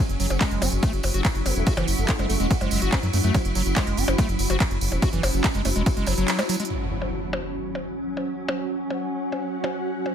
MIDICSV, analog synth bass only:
0, 0, Header, 1, 2, 480
1, 0, Start_track
1, 0, Key_signature, 3, "minor"
1, 0, Tempo, 419580
1, 1907, Time_signature, 4, 2, 24, 8
1, 11609, End_track
2, 0, Start_track
2, 0, Title_t, "Analog synth bass"
2, 0, Program_c, 0, 38
2, 107, Note_on_c, 0, 30, 84
2, 185, Note_off_c, 0, 30, 0
2, 227, Note_on_c, 0, 30, 99
2, 305, Note_off_c, 0, 30, 0
2, 347, Note_on_c, 0, 30, 95
2, 425, Note_off_c, 0, 30, 0
2, 586, Note_on_c, 0, 30, 87
2, 665, Note_off_c, 0, 30, 0
2, 707, Note_on_c, 0, 30, 102
2, 785, Note_off_c, 0, 30, 0
2, 827, Note_on_c, 0, 30, 99
2, 905, Note_off_c, 0, 30, 0
2, 1066, Note_on_c, 0, 30, 90
2, 1145, Note_off_c, 0, 30, 0
2, 1186, Note_on_c, 0, 30, 108
2, 1265, Note_off_c, 0, 30, 0
2, 1306, Note_on_c, 0, 30, 99
2, 1385, Note_off_c, 0, 30, 0
2, 1546, Note_on_c, 0, 30, 87
2, 1625, Note_off_c, 0, 30, 0
2, 1667, Note_on_c, 0, 30, 104
2, 1745, Note_off_c, 0, 30, 0
2, 1787, Note_on_c, 0, 28, 100
2, 1865, Note_off_c, 0, 28, 0
2, 2027, Note_on_c, 0, 30, 86
2, 2105, Note_off_c, 0, 30, 0
2, 2146, Note_on_c, 0, 30, 102
2, 2225, Note_off_c, 0, 30, 0
2, 2266, Note_on_c, 0, 30, 89
2, 2345, Note_off_c, 0, 30, 0
2, 2506, Note_on_c, 0, 30, 92
2, 2585, Note_off_c, 0, 30, 0
2, 2626, Note_on_c, 0, 30, 105
2, 2705, Note_off_c, 0, 30, 0
2, 2746, Note_on_c, 0, 28, 95
2, 2825, Note_off_c, 0, 28, 0
2, 2986, Note_on_c, 0, 30, 91
2, 3065, Note_off_c, 0, 30, 0
2, 3106, Note_on_c, 0, 30, 104
2, 3185, Note_off_c, 0, 30, 0
2, 3226, Note_on_c, 0, 30, 96
2, 3305, Note_off_c, 0, 30, 0
2, 3467, Note_on_c, 0, 42, 85
2, 3545, Note_off_c, 0, 42, 0
2, 3586, Note_on_c, 0, 42, 106
2, 3665, Note_off_c, 0, 42, 0
2, 3707, Note_on_c, 0, 42, 98
2, 3785, Note_off_c, 0, 42, 0
2, 3947, Note_on_c, 0, 30, 85
2, 4025, Note_off_c, 0, 30, 0
2, 4066, Note_on_c, 0, 30, 104
2, 4145, Note_off_c, 0, 30, 0
2, 4186, Note_on_c, 0, 30, 98
2, 4265, Note_off_c, 0, 30, 0
2, 4426, Note_on_c, 0, 30, 86
2, 4505, Note_off_c, 0, 30, 0
2, 4546, Note_on_c, 0, 30, 97
2, 4625, Note_off_c, 0, 30, 0
2, 4666, Note_on_c, 0, 30, 94
2, 4745, Note_off_c, 0, 30, 0
2, 4906, Note_on_c, 0, 30, 88
2, 4985, Note_off_c, 0, 30, 0
2, 5026, Note_on_c, 0, 30, 99
2, 5105, Note_off_c, 0, 30, 0
2, 5146, Note_on_c, 0, 30, 101
2, 5225, Note_off_c, 0, 30, 0
2, 5387, Note_on_c, 0, 30, 84
2, 5465, Note_off_c, 0, 30, 0
2, 5507, Note_on_c, 0, 30, 104
2, 5585, Note_off_c, 0, 30, 0
2, 5627, Note_on_c, 0, 28, 93
2, 5705, Note_off_c, 0, 28, 0
2, 5866, Note_on_c, 0, 30, 88
2, 5945, Note_off_c, 0, 30, 0
2, 5986, Note_on_c, 0, 30, 104
2, 6065, Note_off_c, 0, 30, 0
2, 6106, Note_on_c, 0, 30, 92
2, 6185, Note_off_c, 0, 30, 0
2, 6346, Note_on_c, 0, 30, 86
2, 6425, Note_off_c, 0, 30, 0
2, 6467, Note_on_c, 0, 30, 104
2, 6545, Note_off_c, 0, 30, 0
2, 6586, Note_on_c, 0, 28, 98
2, 6665, Note_off_c, 0, 28, 0
2, 6826, Note_on_c, 0, 30, 90
2, 6905, Note_off_c, 0, 30, 0
2, 6946, Note_on_c, 0, 30, 104
2, 7025, Note_off_c, 0, 30, 0
2, 7066, Note_on_c, 0, 30, 96
2, 7145, Note_off_c, 0, 30, 0
2, 11609, End_track
0, 0, End_of_file